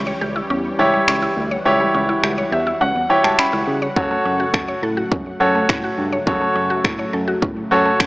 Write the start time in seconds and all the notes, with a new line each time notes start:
Already playing: C#2 E3 G3 G4 C#5
0.07 C#5
0.21 C#2 G4
0.36 E4
0.50 E2 C#4
0.79 C#2 E3 E4 G4 C#5
0.94 G3
1.08 C#2 C#4, finger snap
1.22 E4
1.37 D2 F#5
1.51 C#5
1.65 C#2 E3 E4 G4 C#5
1.80 G3
1.94 C#2 C#4
2.09 E4
2.23 C#2 G4, finger snap
2.38 C#5
2.52 E2 G4 E5
2.67 E4
2.81 C#2 C#4 F#5
2.95 E2
3.09 E3 E4 G4 C#5 G5
3.24 C#2 G3 A5, finger snap
3.39 C#2 C#4 B5, finger snap
3.53 C#2 E4
3.67 C#3
3.82 C#5
3.96 F#2 C#3 F#3 A3 F#4 A4 C#5, kick
4.11 A3
4.25 F#2 C#4
4.40 F#4
4.54 F#2 A4, finger snap, kick
4.68 C#5
4.83 A2 A4
4.97 F#4
5.12 F#2 C#4, kick
5.40 F#2 F#3 F#4 A4 C#5
5.55 A3
5.69 A2 C#4, finger snap, kick
5.84 F#4
5.98 G2
6.12 C#5
6.27 F#2 F#3 F#4 A4 C#5, kick
6.41 A3
6.56 F#2 C#4
6.70 F#4
6.84 A2 A4, finger snap, kick
6.99 C#5
7.13 F#2 A4
7.28 F#4
7.42 A2 C#4, kick
7.71 F#2 F#3 F#4 A4 C#5
7.85 A3
8.00 F#2 C#4, finger snap, kick